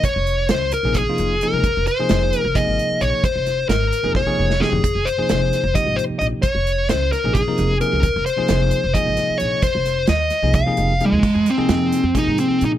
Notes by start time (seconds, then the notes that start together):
0.03 C#5, muted upright bass stroke, kick, closed hi-hat
0.16 F1
0.27 closed hi-hat
0.49 C#2 C5, snare, closed hi-hat
0.72 A#4, closed hi-hat
0.83 A#1 C3 F3 A#3 D#4 G#4
0.94 G#4, kick, closed hi-hat
1.07 C3 F3 A#3 D#4 F4, muted upright bass stroke
1.18 F1, closed hi-hat
1.41 C3 F3 A#3 D#4 G#4 A#4, closed hi-hat
1.53 C#2
1.64 muted upright bass stroke, kick, closed hi-hat
1.77 F1
1.87 C5, closed hi-hat
1.99 C3 F3 A#3 D#4 G#4, muted upright bass stroke
2.09 F1, snare, closed hi-hat
2.33 closed hi-hat
2.41 F1 A#4
2.55 C3 F3 A#3 D#4 G#4 D#5, kick, snare, closed hi-hat
2.67 G#1
2.79 closed hi-hat
2.91 muted upright bass stroke
3.01 A#1 C#5, closed hi-hat
3.24 C5, muted upright bass stroke, kick, closed hi-hat
3.36 F1
3.46 snare, closed hi-hat
3.69 G#1 A#4, snare, closed hi-hat
3.93 closed hi-hat
4.03 F2 C3 F3 A#3 D#4 G#4
4.15 C#5, kick, snare
4.26 C3 F3 A#3 D#4 G#4, muted upright bass stroke, kick
4.39 F1
4.50 snare
4.60 C3 F3 A#3 D#4 G4 G#4, snare
4.72 G#1, floor tom
4.84 kick, closed hi-hat
4.95 F1
5.05 C5, closed hi-hat
5.18 C3 F3 A#3 D#4 G#4, muted upright bass stroke
5.29 F1, snare, closed hi-hat
5.53 snare, closed hi-hat
5.64 F1
5.74 C3 F3 A#3 D#4 G4 D#5, kick, closed hi-hat
5.87 G#1
5.96 C5, closed hi-hat
6.10 muted upright bass stroke
6.19 A#1 D#5, closed hi-hat
6.42 C#5, muted upright bass stroke, kick, closed hi-hat
6.55 F1
6.67 closed hi-hat
6.89 C#2 C5, snare, closed hi-hat
7.12 A#4, snare, closed hi-hat
7.24 A#1 C3 F3 A#3 D#4 G#4
7.33 G#4, kick, snare, closed hi-hat
7.47 C3 F3 A#3 D#4 A#4, muted upright bass stroke
7.58 F1, closed hi-hat
7.81 C3 F3 A#3 D#4 G#4 A#4, closed hi-hat
7.93 C#2
8.03 muted upright bass stroke, kick, closed hi-hat
8.16 F1
8.26 C5, closed hi-hat
8.37 C3 F3 A#3 D#4 G#4, muted upright bass stroke
8.48 F1, snare, closed hi-hat
8.71 closed hi-hat
8.84 F1
8.94 C3 F3 A#3 D#4 G#4 D#5, kick, closed hi-hat
9.06 G#1
9.17 snare, closed hi-hat
9.30 muted upright bass stroke
9.38 A#1 C#5, closed hi-hat
9.62 C5, muted upright bass stroke, kick, closed hi-hat
9.75 F1
9.86 snare, closed hi-hat
10.07 D#2 D#5, snare, closed hi-hat
10.30 snare, closed hi-hat
10.42 C2 C3 F3 A#3 D#4 G#4
10.53 F5, kick, closed hi-hat
10.66 C3 F3 A#3 D#4 G#4
10.77 F1, closed hi-hat
11.00 C3 F3 A#3 D#4 G#4, closed hi-hat
11.06 G#3
11.12 D#2
11.23 muted upright bass stroke, kick, crash
11.35 F2
11.46 C4, snare, closed hi-hat
11.57 C3 F3 A#3 D#4 G#4, muted upright bass stroke
11.69 F2, snare, closed hi-hat
11.92 snare, closed hi-hat
12.04 F2
12.14 C3 F3 A#3 D#4 G#4, kick, snare, closed hi-hat
12.28 G#2
12.38 C4, closed hi-hat
12.50 muted upright bass stroke
12.61 A#2, closed hi-hat
12.65 D#4